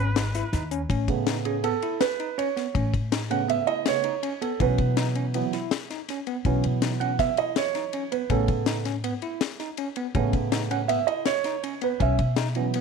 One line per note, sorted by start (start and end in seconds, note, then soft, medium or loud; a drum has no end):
0.00 0.41 G#1 medium
0.00 0.87 G#3 medium
0.00 0.87 D#4 medium
0.00 0.87 F#4 medium
0.00 0.49 B4 medium
0.00 0.87 B4 medium
0.16 0.26 D#4 medium
0.16 snare loud
0.16 closed hi-hat medium
0.35 0.44 E4 medium
0.35 snare soft
0.35 closed hi-hat medium
0.53 0.84 D#2 loud
0.53 0.62 D#4 medium
0.53 snare soft
0.53 closed hi-hat medium
0.71 0.81 C#4 medium
0.71 closed hi-hat medium
0.89 1.05 A1 medium
0.89 1.09 C#4 medium
0.89 kick medium
0.89 ride medium
1.08 1.70 A2 medium
1.08 1.61 C#3 medium
1.08 1.62 A3 soft
1.08 1.62 B3 soft
1.08 kick medium
1.08 ride medium
1.27 1.36 D#4 medium
1.27 snare loud
1.27 ride medium
1.45 1.55 C#4 medium
1.45 1.65 G#4 medium
1.45 ride medium
1.64 1.73 B3 medium
1.64 2.02 A4 medium
1.64 ride medium
1.82 2.02 E4 medium
1.82 ride medium
2.01 2.39 B4 loud
2.01 snare loud
2.01 ride medium
2.20 2.29 D#4 medium
2.20 ride medium
2.38 2.47 C#4 medium
2.38 2.90 C#5 medium
2.38 ride medium
2.56 2.66 B3 medium
2.56 snare soft
2.56 ride medium
2.75 2.90 A1 medium
2.75 2.93 C#4 medium
2.75 kick medium
2.75 ride medium
2.93 3.55 A2 medium
2.93 kick medium
2.93 ride medium
3.12 3.21 D#4 medium
3.12 snare loud
3.12 ride medium
3.30 3.83 C#3 soft
3.30 3.83 A3 soft
3.30 3.84 B3 soft
3.30 3.40 C#4 medium
3.30 3.50 F#5 medium
3.30 ride medium
3.49 3.58 B3 medium
3.49 3.69 E5 loud
3.49 ride medium
3.67 3.86 E4 medium
3.67 3.87 D#5 loud
3.67 ride medium
3.86 4.04 C#3 soft
3.86 4.03 A3 soft
3.86 4.04 B3 medium
3.86 4.44 C#5 loud
3.86 snare loud
3.86 ride medium
4.04 4.14 D#4 medium
4.04 ride medium
4.23 4.32 C#4 medium
4.23 ride medium
4.42 4.51 B3 medium
4.42 4.61 A4 medium
4.42 ride medium
4.60 4.76 B1 medium
4.60 5.34 E3 soft
4.60 5.34 F#3 soft
4.60 5.35 B3 medium
4.60 4.79 C#4 medium
4.60 5.13 B4 medium
4.60 kick medium
4.60 ride medium
4.78 5.40 B2 medium
4.78 kick medium
4.78 ride medium
4.97 5.07 D#4 medium
4.97 snare loud
4.97 ride medium
5.15 5.25 C#4 medium
5.15 ride medium
5.34 5.51 E3 soft
5.34 5.52 F#3 soft
5.34 5.44 B3 medium
5.34 5.52 B3 medium
5.34 ride medium
5.53 5.72 E4 medium
5.53 snare soft
5.53 ride medium
5.71 snare loud
5.71 ride medium
5.90 6.00 D#4 medium
5.90 snare soft
5.90 ride medium
6.09 6.19 C#4 medium
6.09 snare soft
6.09 ride medium
6.27 6.36 B3 medium
6.27 ride medium
6.45 6.60 B1 medium
6.45 8.27 E3 soft
6.45 8.27 F#3 soft
6.45 8.27 B3 medium
6.45 6.64 C#4 medium
6.45 kick medium
6.45 ride medium
6.64 7.25 B2 medium
6.64 ride medium
6.82 6.92 D#4 medium
6.82 snare loud
6.82 ride medium
7.00 7.11 C#4 medium
7.00 7.18 F#5 medium
7.00 ride medium
7.19 7.29 B3 medium
7.19 7.37 E5 loud
7.19 kick loud
7.19 snare soft
7.19 ride medium
7.37 7.57 E4 medium
7.37 7.57 D#5 medium
7.37 ride medium
7.56 8.14 C#5 medium
7.56 snare loud
7.56 ride medium
7.75 7.84 D#4 medium
7.75 snare soft
7.75 ride medium
7.93 8.03 C#4 medium
7.93 ride medium
8.12 8.21 B3 medium
8.12 8.31 B4 medium
8.12 ride medium
8.30 8.45 A1 loud
8.30 8.83 C#3 soft
8.30 8.83 A3 soft
8.30 8.84 B3 medium
8.30 8.49 C#4 medium
8.30 8.83 A4 medium
8.30 kick medium
8.30 ride medium
8.48 9.10 A2 medium
8.48 kick medium
8.48 ride medium
8.66 8.77 D#4 medium
8.66 snare loud
8.66 ride medium
8.85 8.95 C#4 medium
8.85 snare soft
8.85 ride medium
9.04 9.13 B3 medium
9.04 ride medium
9.22 9.41 E4 medium
9.22 ride medium
9.41 snare loud
9.41 ride medium
9.60 9.69 D#4 medium
9.60 snare soft
9.60 ride medium
9.77 9.88 C#4 medium
9.77 ride medium
9.96 10.06 B3 medium
9.96 ride medium
10.15 10.30 A1 medium
10.15 11.97 C#3 medium
10.15 11.97 A3 soft
10.15 11.97 B3 medium
10.15 10.34 C#4 medium
10.15 kick loud
10.15 ride medium
10.33 10.95 A2 medium
10.33 kick medium
10.33 ride medium
10.52 10.62 D#4 medium
10.52 snare loud
10.52 ride medium
10.71 10.80 C#4 medium
10.71 10.76 F#5 medium
10.71 ride medium
10.88 10.99 B3 loud
10.88 11.06 E5 medium
10.88 ride medium
11.07 11.27 E4 medium
11.07 11.27 D#5 medium
11.07 ride medium
11.26 11.84 C#5 loud
11.26 snare loud
11.26 ride medium
11.44 11.55 D#4 medium
11.44 snare soft
11.44 ride medium
11.64 11.73 C#4 medium
11.64 ride medium
11.81 11.91 B3 medium
11.81 12.00 B4 medium
11.81 ride medium
12.00 12.16 B1 loud
12.00 12.19 C#4 medium
12.00 12.53 E5 medium
12.00 kick medium
12.00 ride medium
12.19 12.80 B2 medium
12.19 kick medium
12.19 ride medium
12.36 12.47 D#4 medium
12.36 snare loud
12.36 ride medium
12.55 12.81 E3 soft
12.55 12.81 F#3 soft
12.55 12.81 B3 medium
12.55 12.66 C#4 medium
12.55 ride medium
12.74 12.81 B3 medium
12.74 ride medium